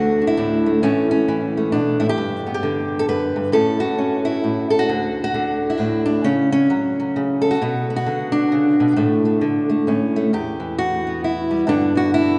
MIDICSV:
0, 0, Header, 1, 2, 480
1, 0, Start_track
1, 0, Tempo, 452148
1, 876, Time_signature, 3, 2, 24, 8
1, 13149, End_track
2, 0, Start_track
2, 0, Title_t, "Steel-string acoustic guitar"
2, 0, Program_c, 0, 25
2, 0, Note_on_c, 0, 38, 80
2, 0, Note_on_c, 0, 50, 68
2, 0, Note_on_c, 0, 57, 44
2, 0, Note_on_c, 0, 66, 99
2, 229, Note_on_c, 0, 62, 45
2, 286, Note_off_c, 0, 66, 0
2, 290, Note_on_c, 0, 64, 87
2, 384, Note_off_c, 0, 62, 0
2, 396, Note_on_c, 0, 62, 77
2, 404, Note_on_c, 0, 45, 71
2, 691, Note_off_c, 0, 57, 0
2, 704, Note_on_c, 0, 57, 51
2, 859, Note_off_c, 0, 57, 0
2, 863, Note_off_c, 0, 45, 0
2, 870, Note_off_c, 0, 64, 0
2, 874, Note_off_c, 0, 50, 0
2, 876, Note_off_c, 0, 62, 0
2, 876, Note_on_c, 0, 45, 75
2, 877, Note_off_c, 0, 38, 0
2, 880, Note_on_c, 0, 61, 99
2, 888, Note_on_c, 0, 52, 54
2, 892, Note_on_c, 0, 57, 56
2, 1165, Note_off_c, 0, 61, 0
2, 1178, Note_on_c, 0, 61, 86
2, 1350, Note_off_c, 0, 52, 0
2, 1362, Note_on_c, 0, 52, 76
2, 1658, Note_off_c, 0, 57, 0
2, 1670, Note_on_c, 0, 57, 50
2, 1824, Note_off_c, 0, 61, 0
2, 1828, Note_on_c, 0, 62, 86
2, 1834, Note_off_c, 0, 45, 0
2, 1838, Note_on_c, 0, 47, 58
2, 2121, Note_off_c, 0, 47, 0
2, 2121, Note_on_c, 0, 64, 88
2, 2126, Note_on_c, 0, 45, 67
2, 2132, Note_off_c, 0, 62, 0
2, 2218, Note_off_c, 0, 64, 0
2, 2223, Note_on_c, 0, 67, 110
2, 2301, Note_off_c, 0, 52, 0
2, 2306, Note_off_c, 0, 57, 0
2, 2311, Note_on_c, 0, 43, 76
2, 2314, Note_off_c, 0, 45, 0
2, 2617, Note_on_c, 0, 59, 42
2, 2688, Note_off_c, 0, 67, 0
2, 2700, Note_on_c, 0, 67, 94
2, 2791, Note_on_c, 0, 50, 74
2, 3177, Note_on_c, 0, 69, 92
2, 3269, Note_off_c, 0, 43, 0
2, 3273, Note_off_c, 0, 69, 0
2, 3274, Note_on_c, 0, 42, 63
2, 3278, Note_on_c, 0, 71, 97
2, 3561, Note_off_c, 0, 42, 0
2, 3566, Note_on_c, 0, 43, 69
2, 3667, Note_off_c, 0, 67, 0
2, 3739, Note_on_c, 0, 45, 78
2, 3741, Note_off_c, 0, 59, 0
2, 3745, Note_off_c, 0, 71, 0
2, 3748, Note_on_c, 0, 61, 54
2, 3749, Note_on_c, 0, 69, 102
2, 3756, Note_off_c, 0, 43, 0
2, 3757, Note_on_c, 0, 64, 56
2, 3758, Note_off_c, 0, 50, 0
2, 4030, Note_off_c, 0, 64, 0
2, 4034, Note_on_c, 0, 66, 98
2, 4218, Note_off_c, 0, 61, 0
2, 4230, Note_on_c, 0, 61, 63
2, 4507, Note_off_c, 0, 69, 0
2, 4511, Note_on_c, 0, 64, 98
2, 4698, Note_off_c, 0, 45, 0
2, 4711, Note_on_c, 0, 45, 62
2, 4989, Note_off_c, 0, 64, 0
2, 4993, Note_on_c, 0, 69, 92
2, 5008, Note_off_c, 0, 66, 0
2, 5084, Note_on_c, 0, 66, 102
2, 5176, Note_off_c, 0, 61, 0
2, 5190, Note_off_c, 0, 69, 0
2, 5191, Note_on_c, 0, 38, 76
2, 5195, Note_on_c, 0, 50, 54
2, 5198, Note_off_c, 0, 45, 0
2, 5549, Note_off_c, 0, 66, 0
2, 5562, Note_on_c, 0, 66, 101
2, 5659, Note_off_c, 0, 50, 0
2, 5671, Note_on_c, 0, 50, 70
2, 6048, Note_on_c, 0, 64, 75
2, 6131, Note_off_c, 0, 66, 0
2, 6131, Note_on_c, 0, 62, 67
2, 6147, Note_on_c, 0, 45, 67
2, 6416, Note_off_c, 0, 62, 0
2, 6429, Note_on_c, 0, 62, 86
2, 6628, Note_off_c, 0, 62, 0
2, 6629, Note_off_c, 0, 45, 0
2, 6629, Note_on_c, 0, 61, 94
2, 6631, Note_off_c, 0, 64, 0
2, 6633, Note_on_c, 0, 49, 79
2, 6638, Note_off_c, 0, 38, 0
2, 6638, Note_off_c, 0, 50, 0
2, 6913, Note_off_c, 0, 61, 0
2, 6926, Note_on_c, 0, 61, 92
2, 7112, Note_on_c, 0, 54, 68
2, 7118, Note_off_c, 0, 49, 0
2, 7423, Note_off_c, 0, 54, 0
2, 7428, Note_on_c, 0, 54, 45
2, 7601, Note_on_c, 0, 49, 65
2, 7872, Note_on_c, 0, 69, 93
2, 7969, Note_on_c, 0, 66, 100
2, 8059, Note_off_c, 0, 49, 0
2, 8064, Note_off_c, 0, 54, 0
2, 8068, Note_off_c, 0, 69, 0
2, 8074, Note_off_c, 0, 61, 0
2, 8084, Note_on_c, 0, 47, 88
2, 8092, Note_on_c, 0, 59, 59
2, 8376, Note_off_c, 0, 59, 0
2, 8389, Note_on_c, 0, 59, 49
2, 8442, Note_off_c, 0, 66, 0
2, 8455, Note_on_c, 0, 66, 103
2, 8561, Note_on_c, 0, 50, 72
2, 8562, Note_off_c, 0, 47, 0
2, 8833, Note_on_c, 0, 62, 88
2, 9043, Note_on_c, 0, 49, 69
2, 9330, Note_off_c, 0, 66, 0
2, 9339, Note_off_c, 0, 49, 0
2, 9343, Note_on_c, 0, 47, 66
2, 9502, Note_off_c, 0, 59, 0
2, 9512, Note_off_c, 0, 47, 0
2, 9516, Note_on_c, 0, 45, 80
2, 9523, Note_on_c, 0, 57, 58
2, 9810, Note_off_c, 0, 57, 0
2, 9822, Note_on_c, 0, 57, 46
2, 9980, Note_off_c, 0, 50, 0
2, 9993, Note_on_c, 0, 50, 67
2, 9997, Note_off_c, 0, 45, 0
2, 10280, Note_off_c, 0, 57, 0
2, 10293, Note_on_c, 0, 57, 50
2, 10454, Note_off_c, 0, 57, 0
2, 10464, Note_off_c, 0, 62, 0
2, 10474, Note_off_c, 0, 50, 0
2, 10479, Note_on_c, 0, 45, 67
2, 10488, Note_on_c, 0, 61, 61
2, 10788, Note_on_c, 0, 57, 58
2, 10939, Note_off_c, 0, 61, 0
2, 10941, Note_off_c, 0, 57, 0
2, 10957, Note_off_c, 0, 45, 0
2, 10967, Note_on_c, 0, 40, 75
2, 10974, Note_on_c, 0, 67, 84
2, 11250, Note_on_c, 0, 52, 59
2, 11444, Note_off_c, 0, 67, 0
2, 11449, Note_on_c, 0, 66, 101
2, 11751, Note_on_c, 0, 59, 51
2, 11921, Note_off_c, 0, 66, 0
2, 11935, Note_on_c, 0, 64, 79
2, 12216, Note_on_c, 0, 55, 51
2, 12369, Note_off_c, 0, 52, 0
2, 12376, Note_off_c, 0, 40, 0
2, 12387, Note_on_c, 0, 43, 89
2, 12390, Note_off_c, 0, 59, 0
2, 12394, Note_on_c, 0, 50, 58
2, 12395, Note_off_c, 0, 55, 0
2, 12403, Note_off_c, 0, 64, 0
2, 12403, Note_on_c, 0, 59, 53
2, 12409, Note_on_c, 0, 62, 93
2, 12678, Note_off_c, 0, 50, 0
2, 12690, Note_on_c, 0, 50, 61
2, 12709, Note_on_c, 0, 66, 100
2, 12881, Note_off_c, 0, 66, 0
2, 12888, Note_on_c, 0, 64, 107
2, 13149, Note_off_c, 0, 43, 0
2, 13149, Note_off_c, 0, 50, 0
2, 13149, Note_off_c, 0, 59, 0
2, 13149, Note_off_c, 0, 62, 0
2, 13149, Note_off_c, 0, 64, 0
2, 13149, End_track
0, 0, End_of_file